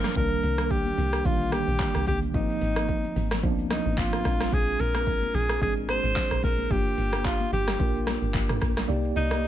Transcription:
Already playing: tine electric piano F3 G3 A#3 D4 F5 G5, alto saxophone A#4, reverse cymbal
0.04 cross-stick, snare, high conga, shaker
0.15 log drum bass C2, tine electric piano D#3 G3 A#3 D4, alto saxophone A#4, kick, shaker
0.32 shaker
0.43 log drum bass C2, open hi-hat, shaker
0.58 cross-stick, high conga, shaker
0.70 alto saxophone G4, kick, shaker
0.86 high conga, shaker
0.98 log drum bass C2, open hi-hat, low conga, shaker
1.12 cross-stick, shaker
1.24 log drum bass A#1, tine electric piano D3 G3 A#3 D4, alto saxophone F4, kick, low conga, shaker
1.31 tine electric piano D#3
1.40 shaker
1.52 alto saxophone G4, cross-stick, open hi-hat, high conga, shaker
1.67 log drum bass A#1, high conga, shaker
1.80 kick, clap, low conga, shaker
1.95 log drum bass C2, cross-stick, shaker
2.06 log drum bass C2, alto saxophone G4, kick, open hi-hat, high conga, shaker
2.22 high conga, shaker
2.33 log drum bass G#1, tine electric piano F3 A#3 C4 D#4, alto saxophone D#4, kick, shaker
2.50 shaker
2.61 log drum bass G#1, open hi-hat, shaker
2.76 cross-stick, high conga, shaker
2.89 kick, shaker
3.04 high conga, shaker
3.16 log drum bass G#1, open hi-hat, low conga, shaker
3.31 cross-stick, snare, shaker
3.42 log drum bass C2, tine electric piano F3 A#3 B3 D4, kick, low conga, shaker
3.51 tine electric piano C4
3.59 shaker
3.70 alto saxophone D#4, cross-stick, snare, open hi-hat, high conga, shaker
3.86 log drum bass G#1, high conga, shaker
3.98 log drum bass G#1, alto saxophone F4, kick, clap, low conga, shaker
4.13 cross-stick, shaker
4.24 log drum bass A#1, tine electric piano G#3 C4 D4 F4, kick, cross-stick, open hi-hat, high conga, shaker
4.40 cross-stick, snare, high conga, shaker
4.52 log drum bass A#1, alto saxophone G#4, kick, shaker
4.68 shaker
4.80 log drum bass A#1, alto saxophone A#4, open hi-hat, shaker
4.95 cross-stick, high conga, shaker
5.07 kick, shaker
5.22 high conga, shaker
5.34 log drum bass A#1, alto saxophone G#4, open hi-hat, low conga, shaker
5.49 cross-stick, shaker
5.61 log drum bass G#1, tine electric piano G#3 C4 D4 G#4, alto saxophone G#4, kick, low conga, shaker
5.77 shaker
5.89 alto saxophone C5, cross-stick, open hi-hat, high conga, shaker
6.04 log drum bass G#1, high conga, shaker
6.16 kick, clap, low conga, shaker
6.31 log drum bass A#1, cross-stick, shaker
6.43 log drum bass A#1, alto saxophone A#4, kick, open hi-hat, high conga, shaker
6.58 high conga, shaker
6.70 log drum bass G1, tine electric piano A#3 D4 F4 G4, alto saxophone G4, kick, low conga, shaker
6.86 shaker
6.98 log drum bass G1, open hi-hat, shaker
7.13 cross-stick, high conga, shaker
7.25 alto saxophone F4, kick, clap, shaker
7.40 high conga, shaker
7.53 log drum bass G1, alto saxophone G4, open hi-hat, low conga, shaker
7.67 cross-stick, snare, high conga, shaker
7.78 log drum bass A#1, tine electric piano A#3 D4 F4 A#4, kick, low conga, shaker
7.95 shaker
8.07 cross-stick, snare, open hi-hat, high conga, shaker
8.22 log drum bass G1, high conga, shaker
8.34 log drum bass G1, kick, clap, low conga, shaker
8.49 cross-stick, mid tom, shaker
8.61 log drum bass A#1, kick, cross-stick, open hi-hat, high conga, shaker
8.77 cross-stick, snare, high conga, shaker
8.88 log drum bass C2, tine electric piano A#3 D#4 G4 D5, shaker
9.04 shaker
9.16 log drum bass C2, alto saxophone D#4, open hi-hat, shaker
9.31 cross-stick, high conga, shaker
9.44 shaker

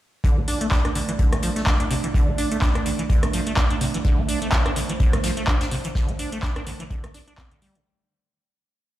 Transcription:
0.24 acid bass D3, ambient pad A3 D4 D5, kick, closed hi-hat
0.37 acid bass D4
0.48 acid bass D4, closed hi-hat, open hi-hat
0.61 acid bass A3, closed hi-hat
0.71 acid bass D4, kick, snare, clap, closed hi-hat
0.85 acid bass D4, cross-stick, closed hi-hat
0.95 acid bass D3, closed hi-hat, open hi-hat
1.09 acid bass E3, closed hi-hat
1.19 acid bass D3, kick, closed hi-hat
1.32 acid bass D4, cross-stick, closed hi-hat
1.42 acid bass F3, closed hi-hat, open hi-hat
1.56 acid bass A3, snare, closed hi-hat
1.67 acid bass D4, kick, snare, clap, closed hi-hat
1.80 acid bass D4, closed hi-hat
1.91 acid bass C3, closed hi-hat, open hi-hat
2.04 acid bass E3, closed hi-hat
2.14 acid bass D3, kick, closed hi-hat
2.28 acid bass D4
2.38 acid bass D4, closed hi-hat, open hi-hat
2.51 acid bass A3, closed hi-hat
2.62 acid bass D4, kick, snare, clap, closed hi-hat
2.75 acid bass D4, cross-stick, closed hi-hat
2.86 acid bass D3, closed hi-hat, open hi-hat
2.99 acid bass E3, closed hi-hat
3.10 acid bass D3, kick, closed hi-hat
3.23 acid bass D4, cross-stick, closed hi-hat
3.33 acid bass F3, closed hi-hat, open hi-hat
3.47 acid bass A3, closed hi-hat
3.56 acid bass D4, kick, snare, clap, closed hi-hat
3.70 acid bass D4, closed hi-hat
3.81 acid bass C3, closed hi-hat, open hi-hat
3.94 acid bass E3, closed hi-hat
4.04 acid bass D3, ambient pad C5, kick, closed hi-hat
4.18 acid bass D4
4.29 acid bass D4, closed hi-hat, open hi-hat
4.42 acid bass A3, closed hi-hat
4.52 acid bass D4, kick, snare, clap, closed hi-hat
4.66 acid bass D4, cross-stick, closed hi-hat
4.76 acid bass D3, closed hi-hat, open hi-hat
4.89 acid bass E3, closed hi-hat
5.00 acid bass D3, kick, closed hi-hat
5.13 acid bass D4, cross-stick, closed hi-hat
5.23 acid bass F3, snare, closed hi-hat, open hi-hat
5.37 acid bass A3, closed hi-hat
5.47 acid bass D4, kick, clap, closed hi-hat
5.61 acid bass D4, snare, closed hi-hat
5.71 acid bass C3, open hi-hat
5.84 acid bass E3, closed hi-hat
5.95 acid bass D3, kick, snare, closed hi-hat
6.09 acid bass D4, closed hi-hat
6.19 acid bass D4, closed hi-hat, open hi-hat
6.32 acid bass A3, closed hi-hat
6.43 acid bass D4, kick, snare, clap, closed hi-hat
6.56 acid bass D4, cross-stick, closed hi-hat
6.66 acid bass D3, closed hi-hat, open hi-hat
6.80 acid bass E3, closed hi-hat
6.91 acid bass D3, kick, closed hi-hat
7.04 acid bass D4, cross-stick, closed hi-hat
7.14 acid bass D4, closed hi-hat, open hi-hat
7.28 acid bass D4, closed hi-hat
7.38 acid bass C4, kick, snare, clap, closed hi-hat
7.51 acid bass D3, closed hi-hat
7.62 acid bass G3, closed hi-hat, open hi-hat
7.75 acid bass C3, closed hi-hat

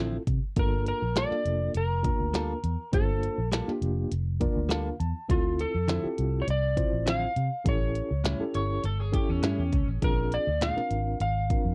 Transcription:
Already playing: fingered electric bass A1, clean electric guitar D3, reed electric piano C4 E4 F4 A4
0.00 clean electric guitar F3 C4 E4
0.27 fingered electric bass C3, kick, closed hi-hat
0.56 fingered electric bass G1, reed electric piano A#3 D4 F4 A4, electric slide guitar A#4, kick, closed hi-hat
0.87 electric slide guitar A#4, closed hi-hat
1.02 fingered electric bass A#1
1.16 clean electric guitar G3 A#3 F4 A4, electric slide guitar D5, snare, closed hi-hat
1.30 reed electric piano A#3 D4 F4 A4, muted fingered electric bass stroke, snare
1.45 fingered electric bass F1, closed hi-hat
1.75 fingered electric bass F1, electric slide guitar A#4, closed hi-hat
2.03 reed electric piano A#3 D4 F4 A#4, kick, closed hi-hat
2.20 fingered electric bass D2
2.34 clean electric guitar G3 A#3 F4 A4, snare, closed hi-hat
2.64 fingered electric bass E2, closed hi-hat
2.92 fingered electric bass G1, reed electric piano A#3 D4 F4 C5, electric slide guitar A4, kick, closed hi-hat
3.23 closed hi-hat
3.38 fingered electric bass A#1
3.52 clean electric guitar G3 A#3 F4 A4, snare, closed hi-hat
3.67 reed electric piano A#3 D4 F4 G4, muted fingered electric bass stroke, snare
3.82 fingered electric bass F1, closed hi-hat
4.12 fingered electric bass F1, closed hi-hat
4.40 reed electric piano A#3 D4 F4 A#4 D5, kick, closed hi-hat
4.56 fingered electric bass D2
4.69 clean electric guitar G3 A#3 F4 A4, reed electric piano F5, snare, closed hi-hat
5.00 fingered electric bass E2, reed electric piano A5, closed hi-hat
5.29 fingered electric bass D2, reed electric piano C4 E4 F4 A4, electric slide guitar F4, kick, closed hi-hat
5.59 electric slide guitar A4, closed hi-hat
5.75 fingered electric bass F2
5.88 clean electric guitar D3 F3 C4 E4, snare, closed hi-hat
6.03 reed electric piano C4 E4 F4 G4, muted fingered electric bass stroke
6.18 fingered electric bass C2, closed hi-hat
6.42 electric slide guitar C#5
6.47 fingered electric bass C2, electric slide guitar D5, closed hi-hat
6.77 reed electric piano C4 E4 F4 C5, kick, closed hi-hat
6.93 fingered electric bass A1
7.06 clean electric guitar D3 F3 C4 E4, electric slide guitar F5, snare, closed hi-hat
7.36 fingered electric bass C3, closed hi-hat
7.64 fingered electric bass A1, reed electric piano C#4 E4 G4 A4, kick, closed hi-hat
7.69 electric slide guitar C#5
7.95 closed hi-hat
8.11 fingered electric bass C#2
8.24 clean electric guitar A2 G3 C#4 E4, snare, closed hi-hat
8.40 reed electric piano C#4 E4 G4 A4, muted fingered electric bass stroke
8.54 fingered electric bass G1, clean electric guitar C#5, closed hi-hat
8.84 fingered electric bass G1, clean electric guitar A4, closed hi-hat
9.00 clean electric guitar G#4
9.12 reed electric piano C#4 E4 G4 A4, clean electric guitar G4, kick, closed hi-hat
9.29 fingered electric bass E2, clean electric guitar C#4
9.43 fingered electric bass G2, clean electric guitar A2 G3 C#4 E4, snare, closed hi-hat
9.58 fingered electric bass E2
9.73 fingered electric bass C#2, kick, closed hi-hat
9.87 fingered electric bass A1
10.02 fingered electric bass A#1, reed electric piano C4 D4 F4 G#4, electric slide guitar A#4, kick, closed hi-hat
10.32 electric slide guitar D5, closed hi-hat
10.47 fingered electric bass D2
10.61 clean electric guitar A#2 G#3 D4 F4, electric slide guitar F5, snare, closed hi-hat
10.76 reed electric piano C4 D4 F4 A#4, muted fingered electric bass stroke, snare
10.91 fingered electric bass G#1, closed hi-hat
11.20 fingered electric bass G#1, electric slide guitar F5, closed hi-hat
11.50 reed electric piano C4 D4 F4 A#4, kick, closed hi-hat
11.65 fingered electric bass F2

